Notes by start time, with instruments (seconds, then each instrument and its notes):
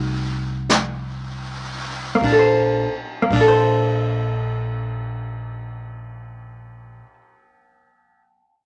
Already playing: upright bass C2, hollow-body jazz guitar F3 A3 D#4 F#4
0.69 brush sweep, snare, hi-hat pedal
2.15 hollow-body jazz guitar A#3
2.21 upright bass A#1, hollow-body jazz guitar D4, kick, ride
2.32 hollow-body jazz guitar A4
2.39 hollow-body jazz guitar C5
3.22 hollow-body jazz guitar A#3
3.30 upright bass A#1, hollow-body jazz guitar D4, kick, ride
3.41 hollow-body jazz guitar A4
3.48 hollow-body jazz guitar C5